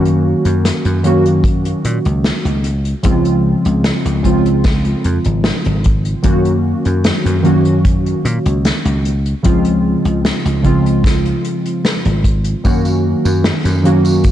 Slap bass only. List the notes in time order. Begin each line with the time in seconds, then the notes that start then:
Already playing: F#2
0.45 F#2
0.85 F#2
1.85 A#2
2.06 C#2
2.45 C#2
3.05 C#2
3.66 C#2
4.05 C#2
5.05 F2
5.26 G#1
5.66 G#1
6.24 F#2
6.86 F#2
7.25 F#2
8.25 A#2
8.46 C#2
8.85 C#2
9.46 C#2
10.05 C#2
10.45 C#2
12.05 G#1
12.65 F#2
13.25 F#2
13.65 F#2